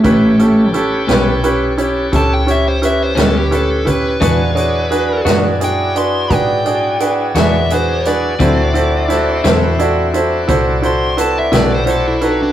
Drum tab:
HH |xxxxxxxxxxxx|xxxxxxxxxxxx|xxxxxxxxxxxx|
SD |---o-----o--|---o-----o-o|--oo-----o--|
BD |o-----o----o|o-----o-----|o-----o-----|